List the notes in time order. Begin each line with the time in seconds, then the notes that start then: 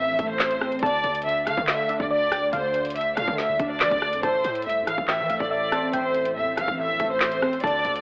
Already playing: A2 E3 A3 C4
0.00 E5
0.08 A#1
0.19 A1 A3, kick, closed hi-hat
0.30 C5
0.40 A2, snare, clap
0.51 closed hi-hat
0.62 C4, cross-stick
0.72 closed hi-hat
0.79 D2 D3 D5 A5, kick, closed hi-hat
0.86 closed hi-hat
1.04 D2, closed hi-hat
1.15 closed hi-hat
1.22 D3 E5, closed hi-hat
1.29 closed hi-hat
1.47 D3 A3 F5, cross-stick, closed hi-hat
1.57 D3, kick
1.67 D3 E5 F5, snare, clap
1.89 D4 E5, closed hi-hat
2.00 D2 D5, kick
2.10 D3 D5
2.32 D5 G5, cross-stick, closed hi-hat
2.53 D2 D3 C5 F5, closed hi-hat
2.74 closed hi-hat
2.85 closed hi-hat
2.90 closed hi-hat
2.95 D3 E5, closed hi-hat
3.01 closed hi-hat
3.17 A2 A3 F5, cross-stick, closed hi-hat
3.28 D3, kick
3.38 D3 E5, snare
3.49 C2
3.59 D2 D4, kick, closed hi-hat
3.70 D5
3.80 D3 F3, snare, clap
3.91 D2, kick, closed hi-hat
4.02 D5, cross-stick
4.13 F2, closed hi-hat
4.23 A1 A2 A3 A4 C5 E5 A5, kick, closed hi-hat
4.44 A2, closed hi-hat
4.55 closed hi-hat
4.62 C2 A2 E5, closed hi-hat
4.69 closed hi-hat
4.82 A2
4.87 E3 F5, cross-stick, closed hi-hat
4.98 A1, kick
5.08 A2 E5 G5, snare, clap
5.19 E3
5.29 A1 A3 F5, closed hi-hat
5.40 A1 D5, kick
5.51 A2 D5 E5
5.72 C4 A5, cross-stick, closed hi-hat
5.93 A1 A2 C5 G5, closed hi-hat
6.15 closed hi-hat
6.25 closed hi-hat
6.36 E2 A2 E5
6.47 A1
6.57 A1 E3 F5, cross-stick, closed hi-hat
6.68 A1, kick
6.79 A2 E5
6.89 A#1
7.00 A1 A3, kick, closed hi-hat
7.11 C5
7.21 A2, snare, clap
7.32 closed hi-hat
7.42 C4, cross-stick
7.53 closed hi-hat
7.60 D2 D3 D4 F4 D5 A5, kick, closed hi-hat
7.67 closed hi-hat
7.85 D2, closed hi-hat
7.96 closed hi-hat